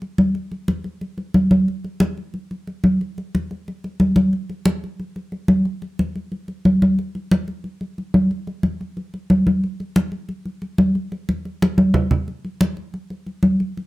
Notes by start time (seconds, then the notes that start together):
0.02 high conga
0.18 high conga
0.35 high conga
0.52 high conga
0.68 high conga
0.84 high conga
1.01 high conga
1.18 high conga
1.34 high conga
1.51 high conga
1.68 high conga
1.84 high conga
2.00 high conga
2.17 high conga
2.34 high conga
2.51 high conga
2.67 high conga
2.84 high conga
3.01 high conga
3.18 high conga
3.35 high conga
3.51 high conga
3.68 high conga
3.84 high conga
4.00 high conga
4.16 high conga
4.33 high conga
4.50 high conga
4.66 high conga
4.84 high conga
5.00 high conga
5.16 high conga
5.32 high conga
5.48 high conga
5.65 high conga
5.82 high conga
5.99 high conga
6.16 high conga
6.32 high conga
6.48 high conga
6.65 high conga
6.82 high conga
6.99 high conga
7.15 high conga
7.31 high conga
7.48 high conga
7.64 high conga
7.81 high conga
7.98 high conga
8.14 high conga
8.31 high conga
8.47 high conga
8.63 high conga
8.81 high conga
8.97 high conga
9.14 high conga
9.30 high conga
9.47 high conga
9.64 high conga
9.80 high conga
9.96 high conga
10.12 high conga
10.29 high conga
10.45 high conga
10.62 high conga
10.78 high conga
10.95 high conga
11.12 high conga
11.29 high conga
11.45 high conga
11.62 high conga
11.78 high conga
11.94 low conga
12.11 low conga
12.28 high conga
12.45 high conga
12.61 high conga
12.77 high conga
12.94 high conga
13.10 high conga
13.27 high conga
13.43 high conga
13.60 high conga
13.77 high conga